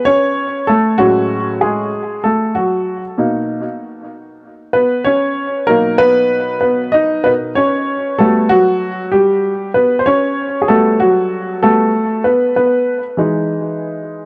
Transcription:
0.05 C#4 C#5
0.67 A3 A4
0.98 A2 F#3 G#3 C#4 F#4
1.61 G#3 G#4
2.24 A3 A4
2.55 F#3 F#4
3.18 B2 A#3 D#4
4.73 B3 B4
5.04 C#4 C#5
5.67 B2 F#3 A#3 D#4 A#4
5.98 B3 B4
6.61 B3 B4
6.92 D#4 D#5
7.24 B2 B3 D#4 A#4 B4
7.55 C#4 C#5
8.19 G3 A3 B3 F#4 A4
8.49 F#3 F#4
9.12 G3 G4
9.74 B3 B4
9.99 C5
10.06 C#4 C#5
10.62 G#4
10.68 G3 A3 B3 F#4 A4
11.00 F#3 F#4
11.62 G3 A3 B3 F#4 A4
12.24 B3 B4
12.56 B3 B4
13.17 E3 G#3 D#4

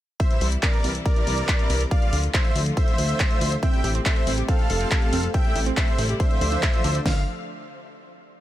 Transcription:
0.20 C5 E5, kick, closed hi-hat
0.31 C3 E3 G3 E4, closed hi-hat
0.41 C2 C3 E3 G3 E4, open hi-hat
0.52 closed hi-hat
0.63 C3 E3 G3 E4 A#4 D5, kick, clap, closed hi-hat
0.73 closed hi-hat
0.84 C2 C3 E3 G3 E4, open hi-hat
0.95 closed hi-hat
1.06 A#4 D5, kick, closed hi-hat
1.16 C3 E3 G3 E4, closed hi-hat
1.27 C2 C3 E3 G3 E4, open hi-hat
1.38 closed hi-hat
1.48 kick, clap, closed hi-hat
1.59 C3 E3 G3 E4, closed hi-hat
1.70 C2, open hi-hat
1.81 closed hi-hat
1.91 D5 F5, kick, closed hi-hat
2.02 D3 F3 A3 F4, closed hi-hat
2.13 D2 D3 F3 A3 F4, open hi-hat
2.23 closed hi-hat
2.34 D3 F3 A3 F4 C5 E5, kick, clap, closed hi-hat
2.45 closed hi-hat
2.56 D2 D3 F3 A3 F4, open hi-hat
2.66 closed hi-hat
2.77 C5 E5, kick, closed hi-hat
2.88 D3 F3 A3 F4, closed hi-hat
2.98 D2 D3 F3 A3 F4, open hi-hat
3.09 closed hi-hat
3.20 kick, clap, closed hi-hat
3.31 D3 F3 A3 F4, closed hi-hat
3.41 D2, open hi-hat
3.52 closed hi-hat
3.63 C4 E5 G5, kick, closed hi-hat
3.73 C3 G3 A3 E4, closed hi-hat
3.84 A1 C3 G3 A3 E4 G4, open hi-hat
3.95 C4, closed hi-hat
4.06 C3 G3 A3 E4 A4 C5 E5, kick, clap, closed hi-hat
4.16 closed hi-hat
4.27 A1 C3 G3 A3 C4 E4, open hi-hat
4.38 G4, closed hi-hat
4.48 C4 A4 F5, kick, closed hi-hat
4.59 C3 G3 A3 F4, closed hi-hat
4.70 F1 C3 G3 A3 F4 A4, open hi-hat
4.81 C4, closed hi-hat
4.91 G4, kick, clap, closed hi-hat
5.02 C3 G3 A3 F4, closed hi-hat
5.13 F1 C4, open hi-hat
5.23 A4, closed hi-hat
5.34 C4 E5 G5, kick, closed hi-hat
5.45 C3 G3 A3 E4, closed hi-hat
5.56 A1 C3 G3 A3 E4 G4, open hi-hat
5.66 C4, closed hi-hat
5.77 C3 G3 A3 E4 A4 C5 E5, kick, clap, closed hi-hat
5.88 closed hi-hat
5.98 A1 C3 G3 A3 C4 E4, open hi-hat
6.09 G4, closed hi-hat
6.20 D4 C5 E5, kick, closed hi-hat
6.30 D3 F3 A3 F4, closed hi-hat
6.41 D2 D3 F3 A3 F4 D5, open hi-hat
6.52 D4, closed hi-hat
6.63 A4, kick, clap, closed hi-hat
6.73 D3 F3 A3 F4, closed hi-hat
6.84 D2 D4, open hi-hat
6.95 D5, closed hi-hat
7.06 D2 D3 F3 A3 D4 F4 F5, kick, snare, open hi-hat

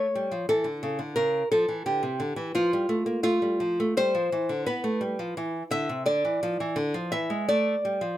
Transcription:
Already playing: C#5
0.15 G3
0.31 F3
0.49 E3 A4
0.64 D3
0.83 C#3
0.99 D3
1.16 C#3 A#4
1.52 F3 A4
1.69 E3
1.86 D3 G4
2.03 C3
2.20 D3
2.36 E3
2.55 F3 F4
2.73 G3
2.89 A3
3.06 A#3
3.23 A3 F4
3.42 G3
3.60 F3
3.80 A3
3.97 G3 C5
4.15 F3
4.32 E3
4.49 D3
4.66 B3 B4
4.84 A3
5.01 G3
5.19 F3
5.37 E3
5.71 D3 E5
5.89 C3
6.06 D3 D5
6.25 E3
6.43 F3
6.60 E3
6.76 D3
6.94 F3
7.12 E3 E5
7.30 G#3
7.49 A3 D5
7.85 G3
8.01 F3

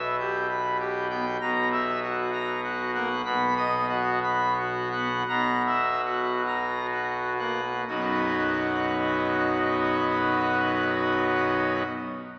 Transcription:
Already playing: B1 B2 E5
0.20 G4
0.49 B5
0.80 G4
1.10 B3 G5
1.41 B1 B2 A#5
1.72 E5
2.03 F#4
2.33 A#5
2.63 F#4
2.94 A#3 F#5
3.25 B1 B2 B5
3.57 D#5
3.89 F#4
4.23 B5
4.58 F#4
4.91 B3 F#5
5.29 B1 B2 A#5
5.66 E5
6.06 F#4
6.47 A#5
6.91 F#4
7.39 A#3 F#5
7.87 B1 F#2 F#3 B3 D#4 F#4

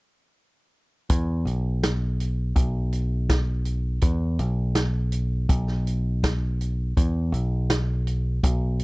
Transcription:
1.10 E2, kick, closed hi-hat
1.45 B1, closed hi-hat
1.83 snare, closed hi-hat
2.20 closed hi-hat
2.56 B1, kick, closed hi-hat
2.93 closed hi-hat
3.29 kick, snare, closed hi-hat
3.65 closed hi-hat
4.02 E2, kick, closed hi-hat
4.39 B1, closed hi-hat
4.75 snare, closed hi-hat
5.12 closed hi-hat
5.49 B1, kick, closed hi-hat
5.67 snare
5.87 closed hi-hat
6.23 kick, snare, closed hi-hat
6.61 closed hi-hat
6.97 E2, kick, closed hi-hat
7.32 B1, closed hi-hat
7.70 snare, closed hi-hat
8.07 closed hi-hat
8.43 B1, kick, closed hi-hat
8.79 closed hi-hat

